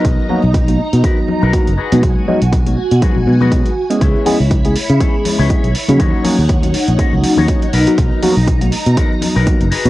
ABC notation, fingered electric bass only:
X:1
M:4/4
L:1/16
Q:"Swing 16ths" 1/4=121
K:B
V:1 name="Fingered electric bass" clef=bass
B,,, z2 B,,,3 z B,, z3 B,,, z F,,, z B,, | B,,, z2 B,,,3 z B,, z B,,, B,,3 z3 | C,, z2 C,,3 z C, z3 C,, z B,,, z C, | D,, z2 D,,3 z A,,, z C,, z D,, z2 B,,, z |
B,,, z2 B,,,3 z B,, z3 B,,, z F,,, z B,, |]